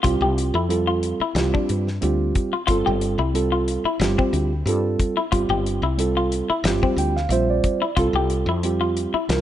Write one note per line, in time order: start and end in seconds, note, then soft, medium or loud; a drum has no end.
0.03 0.20 C2 medium
0.03 0.54 G3 medium
0.03 0.54 C4 medium
0.03 0.13 F4 medium
0.03 0.55 F4 medium
0.03 0.55 G4 loud
0.03 kick loud
0.03 closed hi-hat medium
0.21 0.50 C2 medium
0.21 0.40 G4 medium
0.38 closed hi-hat medium
0.54 1.12 F2 medium
0.54 0.73 E4 medium
0.69 1.20 G3 medium
0.69 1.20 C4 medium
0.69 1.20 F4 medium
0.69 1.21 A4 medium
0.69 closed hi-hat medium
0.87 1.05 F4 medium
1.03 closed hi-hat medium
1.20 1.39 E4 medium
1.20 muted fretless electric bass stroke soft
1.35 1.51 C2 medium
1.35 1.86 G3 medium
1.35 1.87 C4 medium
1.35 1.87 F4 medium
1.35 1.88 G4 loud
1.35 snare loud
1.35 closed hi-hat medium
1.54 1.72 D4 medium
1.54 kick medium
1.69 1.98 G2 medium
1.69 closed hi-hat medium
1.87 snare soft
2.01 2.31 D2 medium
2.01 2.52 G3 medium
2.01 2.52 C4 medium
2.01 2.53 F4 medium
2.01 2.53 G4 medium
2.01 closed hi-hat medium
2.35 kick medium
2.35 closed hi-hat medium
2.53 2.61 F4 medium
2.67 2.84 G1 medium
2.67 3.19 G3 medium
2.67 3.19 C4 medium
2.67 2.77 F4 medium
2.67 3.19 F4 medium
2.67 3.20 A4 medium
2.67 kick loud
2.67 closed hi-hat medium
2.86 3.16 G1 medium
2.86 3.04 G4 medium
3.01 closed hi-hat medium
3.18 3.77 C2 medium
3.18 3.37 E4 medium
3.34 3.84 G3 medium
3.34 3.85 C4 medium
3.34 3.85 F4 medium
3.34 3.85 A4 medium
3.34 closed hi-hat medium
3.52 3.70 F4 medium
3.68 closed hi-hat medium
3.84 4.03 E4 medium
3.84 muted fretless electric bass stroke soft
3.99 4.16 G1 loud
3.99 4.51 G3 medium
3.99 4.51 C4 medium
3.99 4.51 F4 medium
3.99 4.52 G4 loud
3.99 snare loud
3.99 closed hi-hat medium
4.18 4.36 C4 medium
4.18 kick medium
4.33 4.62 D2 medium
4.33 closed hi-hat medium
4.66 4.95 G2 medium
4.66 5.17 G3 medium
4.66 5.17 C4 medium
4.66 5.18 F4 medium
4.66 5.18 A4 medium
4.66 closed hi-hat medium
4.99 kick medium
4.99 closed hi-hat medium
5.17 5.25 E4 medium
5.31 5.48 G1 medium
5.31 5.83 G3 medium
5.31 5.83 C4 medium
5.31 5.42 F4 medium
5.31 5.83 F4 medium
5.31 5.84 G4 medium
5.31 kick loud
5.31 closed hi-hat medium
5.49 5.79 G1 medium
5.49 5.68 G4 medium
5.66 closed hi-hat medium
5.82 6.41 C2 medium
5.82 6.01 E4 medium
5.98 6.49 G3 medium
5.98 6.49 C4 medium
5.98 6.49 F4 medium
5.98 6.50 A4 medium
5.98 closed hi-hat medium
6.17 6.35 F4 medium
6.32 closed hi-hat medium
6.50 6.68 E4 medium
6.50 muted fretless electric bass stroke soft
6.64 6.80 G1 loud
6.64 7.15 G3 medium
6.64 7.15 C4 medium
6.64 7.16 F4 medium
6.64 7.16 G4 loud
6.64 snare loud
6.64 closed hi-hat medium
6.83 7.01 C4 medium
6.83 kick medium
6.96 7.26 D2 medium
6.96 7.15 G5 medium
6.96 closed hi-hat medium
7.16 7.30 F5 medium
7.16 snare soft
7.29 7.59 A#1 medium
7.29 7.81 G3 medium
7.29 7.82 C4 medium
7.29 7.82 F4 medium
7.29 7.82 C5 medium
7.29 7.48 E5 medium
7.29 closed hi-hat medium
7.50 7.94 D5 medium
7.64 kick medium
7.64 closed hi-hat medium
7.82 7.90 E4 medium
7.97 8.13 C2 medium
7.97 8.48 G3 medium
7.97 8.48 C4 medium
7.97 8.07 F4 medium
7.97 8.49 F4 medium
7.97 8.49 A4 loud
7.97 kick loud
7.97 closed hi-hat medium
8.13 8.43 C2 medium
8.13 8.33 G4 medium
8.30 closed hi-hat medium
8.46 9.05 F2 medium
8.46 8.67 E4 medium
8.63 9.14 G3 medium
8.63 9.14 C4 medium
8.63 9.15 F4 medium
8.63 9.15 G4 medium
8.63 closed hi-hat medium
8.81 8.99 F4 medium
8.97 closed hi-hat medium
9.14 9.32 E4 medium
9.14 muted fretless electric bass stroke soft
9.28 9.41 C2 loud
9.28 9.41 G3 medium
9.28 9.41 C4 medium
9.28 9.41 F4 medium
9.28 9.41 A#4 loud
9.28 snare loud
9.28 closed hi-hat medium